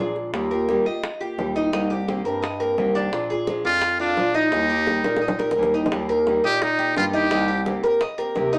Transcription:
Already playing: A#2 F3 G#4
0.00 G#3 D4 F4
0.16 high bongo
0.33 D#2 D#3 G3 A#3 F4 G4, high bongo
0.51 A#3 F4 G4 A#4
0.69 D#3 G3 A#3 F4 G4, high bongo
0.86 A#3 F4 D#5, high bongo
1.04 muted nylon-string guitar stroke, high bongo
1.20 A#3 F4 G4, high bongo
1.37 D#2 D#3 G3 A#3 F4 G4, high bongo, low bongo
1.56 D#4, high bongo
1.72 C2 C3 D#3 A#3 C4 D#4 G4, high bongo
1.90 A#3 C4 G4
2.08 C3 D#3 A#3 C4 G4, high bongo
2.25 G2 A#3 C4 G4 A#4, high bongo
2.42 D#5, muted nylon-string guitar stroke, high bongo
2.59 A#3 C4 G4 A#4, high bongo
2.77 C2 C3 D#3 A#3 C4 G4, high bongo, low bongo
2.95 D4, high bongo
3.11 A#2 F3 G#3 D4 F4, high bongo
3.30 G#3 D4 F4 G#4
3.47 F3 G#3 D4 F4, high bongo
3.64 F2 G#3 D4 F4 D5, high bongo
3.82 muted nylon-string guitar stroke, high bongo
3.99 G#3 D4 F4, high bongo
4.17 A#2 F3 G#3 D4 F4, high bongo, low bongo
4.34 D#4, high bongo
4.51 D#2 D#3 G3 A#3 D#4 G4, high bongo
4.69 A#3 G4
4.87 D#3 G3 A#3 D#4 G4, high bongo
5.04 A#2 A#3 A#4, high bongo
5.17 high bongo
5.21 D#5, muted nylon-string guitar stroke
5.28 low bongo
5.39 A#3 D#4 G4 A#4, high bongo
5.51 low bongo
5.56 D#2 D#3 G3 A#3 D#4 G4
5.63 low bongo
5.74 D#4
5.86 low bongo
5.90 D#2 D#3 G3 A#3 D#4 G4, high bongo
6.09 A#3 D#4 G4 A#4
6.26 D#3 G3 A#3 D#4 G4, high bongo
6.43 A#2 D#4 G4 D#5, high bongo
6.61 D#4, muted nylon-string guitar stroke, high bongo
6.79 A#3 D#4 G4, high bongo
6.96 G2 D#3 G3 A#3 D#4 F4 G4, high bongo, low bongo
7.13 D#4 G4, high bongo
7.31 C2 C3 D#3 A#3 C4 D#4 G4, high bongo
7.48 A#3 C4 G4
7.65 C3 D#3 A#3 C4 G4, high bongo
7.83 A#3 C4 G4 A#4, high bongo
8.01 D#5, muted nylon-string guitar stroke, high bongo
8.18 A#3 C4 G4 A#4, high bongo
8.35 C3 D#3 A#3 C4 G4, high bongo, low bongo
8.53 D#4, high bongo

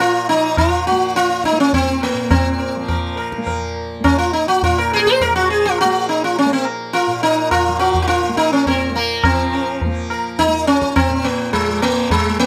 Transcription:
Already playing: A#2 F3 A#3
0.00 F4
0.29 F3 D#4
0.57 F4, tabla na, tabla ge
0.87 F#4
0.91 A#3
1.15 F4, tabla te
1.30 tabla te
1.44 D#4, tabla ke
1.52 A#3
1.59 C#4, tabla te
1.73 C4, tabla tin, tabla ge
2.02 A#3, tabla na
2.13 A#2
2.31 C4, tabla na, tabla ge
2.59 A#4
2.76 F3
2.88 A#4, tabla tin, tabla ge
3.17 A#4, tabla na
3.32 tabla ke
3.38 A#3
3.47 A#4, tabla tin, tabla ge
4.00 A#3 C#4
4.04 tabla na, tabla ge
4.18 F4
4.33 D#4
4.48 F#4
4.61 A#2 F4, tabla tin, tabla ge
4.78 A#4
4.92 G#4, tabla na
4.96 G#4 A#4
5.06 C5, tabla ke
5.20 F3 A#4, tabla tin, tabla ge
5.36 F#4
5.50 G#4
5.65 F4
5.78 F#4, tabla na
5.85 A#3
6.09 D#4
6.24 F4
6.36 C#4, tabla tin
6.45 A#3
6.53 C4
6.65 tabla na
6.93 F4 A#4, tabla tin
7.07 A#2
7.23 D#4 A#4
7.51 F4, tabla na, tabla ge
7.68 F3
7.79 F#4 A#4, tabla te
7.94 tabla ge
8.02 F#4
8.08 F4, tabla te
8.23 tabla te
8.29 A#3
8.37 D#4 A#4, tabla ke
8.52 C#4, tabla te
8.66 C4 A#4, tabla tin, tabla ge
8.90 A#3
8.95 A#3 A#4, tabla na
9.24 F3 C4, tabla na, tabla ge
9.54 A#4
9.81 tabla tin, tabla ge
9.86 A#3
10.10 A#4, tabla na
10.38 D#4, tabla tin, tabla ge
10.47 A#3
10.67 C#4, tabla na
10.82 tabla ke
10.96 C4, tabla na, tabla ge
11.08 A#2
11.24 A#3
11.53 G#3, tabla tin, tabla ge
11.69 F3
11.82 A#3, tabla na
12.10 G#3, tabla tin, tabla ge
12.29 A#3
12.40 A#3

